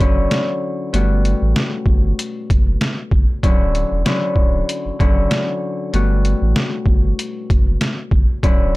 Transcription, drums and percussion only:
0.00 kick medium
0.00 closed hi-hat medium
0.31 snare loud
0.31 closed hi-hat medium
0.94 closed hi-hat medium
1.25 closed hi-hat medium
1.56 snare loud
1.56 closed hi-hat medium
1.86 kick medium
2.19 closed hi-hat loud
2.50 kick medium
2.50 closed hi-hat medium
2.81 snare loud
2.81 closed hi-hat medium
3.11 kick medium
3.43 kick loud
3.43 closed hi-hat medium
3.75 closed hi-hat medium
4.06 snare loud
4.06 closed hi-hat medium
4.36 kick medium
4.69 closed hi-hat loud
5.00 kick medium
5.00 closed hi-hat medium
5.31 snare loud
5.31 closed hi-hat medium
5.94 closed hi-hat medium
6.25 closed hi-hat medium
6.56 snare loud
6.56 closed hi-hat medium
6.86 kick medium
7.19 closed hi-hat loud
7.50 kick medium
7.50 closed hi-hat medium
7.81 snare loud
7.81 closed hi-hat medium
8.11 kick loud
8.43 kick loud
8.43 closed hi-hat medium

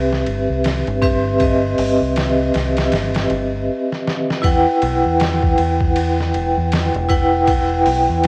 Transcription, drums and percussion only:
0.13 snare soft
0.26 ride medium
0.64 snare loud
0.64 ride medium
0.87 ride soft
1.02 kick medium
1.02 ride medium
1.40 kick loud
1.40 ride medium
1.78 open hi-hat medium
2.16 snare loud
2.16 ride medium
2.54 snare medium
2.54 ride medium
2.77 snare loud
2.77 ride medium
2.92 snare loud
2.92 ride medium
3.15 snare loud
3.15 ride medium
3.30 ride medium
3.92 snare soft
4.07 snare medium
4.30 snare medium
4.44 kick loud
4.44 ride medium
4.82 ride medium
5.20 snare loud
5.20 ride medium
5.43 kick loud
5.58 ride medium
5.81 kick medium
5.96 ride medium
6.20 snare soft
6.34 ride medium
6.72 snare loud
6.72 ride medium
6.94 ride soft
7.10 kick medium
7.10 ride medium
7.47 kick loud
7.47 ride medium
7.86 open hi-hat medium
8.24 ride medium

